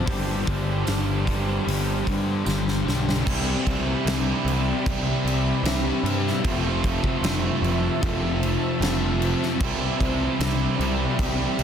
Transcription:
Already playing: ambient pad C5 D5
0.06 picked electric bass G1, distorted electric guitar G2 D3 G3, overdriven electric guitar C4 D4 G4, ambient pad G4 C6, kick, open hi-hat
0.45 picked electric bass G1, overdriven electric guitar G2, distorted electric guitar D3 G3, kick, open hi-hat
0.87 picked electric bass G1, distorted electric guitar G2 D3 G3, snare, open hi-hat, tambourine
1.25 overdriven electric guitar G2, distorted electric guitar G3, kick, open hi-hat
1.29 distorted electric guitar D3
1.64 picked electric bass G1, distorted electric guitar G2, overdriven electric guitar D3 G3
1.68 distorted electric guitar D3 G3, open hi-hat
2.04 overdriven electric guitar G2 D3, picked electric bass G2, distorted electric guitar G3, kick, open hi-hat
2.09 distorted electric guitar D3
2.46 picked electric bass G1, distorted electric guitar G2 D3 G3, snare, tambourine
2.68 snare
2.84 picked electric bass B1, overdriven electric guitar G2, distorted electric guitar G3
2.88 distorted electric guitar D3, snare
3.09 snare
3.26 picked electric bass C2, distorted electric guitar C3 G3 C4, overdriven electric guitar E3 E4, ambient pad G4 C5 E5 B5, kick, crash
3.67 picked electric bass C2, kick, crash
4.05 picked electric bass C2, snare, crash
4.45 picked electric bass C2, distorted electric guitar G3 C4, crash
4.85 picked electric bass C2, distorted electric guitar C3 G3 C4, kick, crash
5.24 picked electric bass C2, distorted electric guitar G3 C4, crash
5.63 picked electric bass C2, distorted electric guitar C3 G3 C4, snare, crash
6.03 picked electric bass G2, distorted electric guitar G3 C4, crash
6.27 snare
6.43 picked electric bass F1, distorted electric guitar F2 C3 F3, overdriven electric guitar A3 C4 F4, ambient pad F4 A5, kick, crash
6.84 kick, crash
7.04 kick
7.22 picked electric bass F1, snare, crash
7.61 picked electric bass F1, distorted electric guitar C3 F3, crash
8.01 picked electric bass F1, distorted electric guitar F2 C3 F3, kick, crash
8.42 distorted electric guitar C3 F3, crash
8.80 picked electric bass F1, distorted electric guitar F2 C3 F3, snare, crash
9.19 distorted electric guitar C3 F3, crash
9.43 snare
9.59 picked electric bass C2, distorted electric guitar C3 G3 C4, overdriven electric guitar E3, ambient pad G4 B5, kick, crash
9.64 overdriven electric guitar E4
10.01 picked electric bass C2, kick, crash
10.40 picked electric bass C2, snare, crash
10.78 picked electric bass C2, distorted electric guitar G3 C4, crash
11.17 picked electric bass C2, distorted electric guitar C3 G3 C4, kick, crash
11.57 picked electric bass C2, distorted electric guitar G3 C4, crash

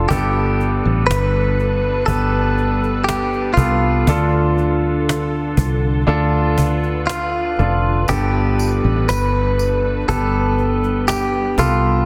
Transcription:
Already playing: grand piano D4 E4 F4 A4, ambient pad A4
0.09 fingered electric bass G1, grand piano G2 B3 G4 A4, ambient pad G3 D4 B4, clean electric guitar G4, cajon bass
0.60 cajon slap
0.85 fingered electric bass A1
1.07 fingered electric bass G1, clean electric guitar B4
1.11 cajon slap
1.59 cajon slap
2.06 fingered electric bass G1, grand piano B3 G4 B4, clean electric guitar A4, cajon bass
2.58 cajon slap
2.83 cajon slap
3.04 clean electric guitar G4
3.09 cajon slap
3.33 cajon slap
3.54 fingered electric bass C2, grand piano B3, clean electric guitar F4, cajon bass
3.58 grand piano G4 A4
4.06 fingered electric bass D2, ambient pad D3 F4 A4, grand piano D3 D4 F4 A4, cajon bass
4.58 cajon slap
5.09 cajon slap
5.57 fingered electric bass C2, cajon bass
6.07 fingered electric bass D2, grand piano D4 F4 A4, ambient pad B4, cajon slap
6.58 cajon bass
6.83 cajon slap
7.07 clean electric guitar F4, cajon slap
7.58 fingered electric bass F1, grand piano D4 F4 A4, cajon slap
8.08 fingered electric bass G1, grand piano G2 B3 G4 A4, ambient pad G3 A4 B4, clean electric guitar G4, cajon bass, tambourine
8.59 cajon slap, tambourine
8.84 fingered electric bass A1
9.09 fingered electric bass G1, clean electric guitar B4, cajon slap, tambourine
9.59 cajon slap, tambourine
10.08 fingered electric bass G1, grand piano B3 G4 B4, ambient pad G4, clean electric guitar A4, cajon bass, tambourine
10.58 cajon slap
10.83 cajon slap
11.08 clean electric guitar G4, cajon slap, tambourine
11.33 cajon slap
11.58 fingered electric bass C2, grand piano B3 G4 A4, clean electric guitar F4, cajon bass, tambourine

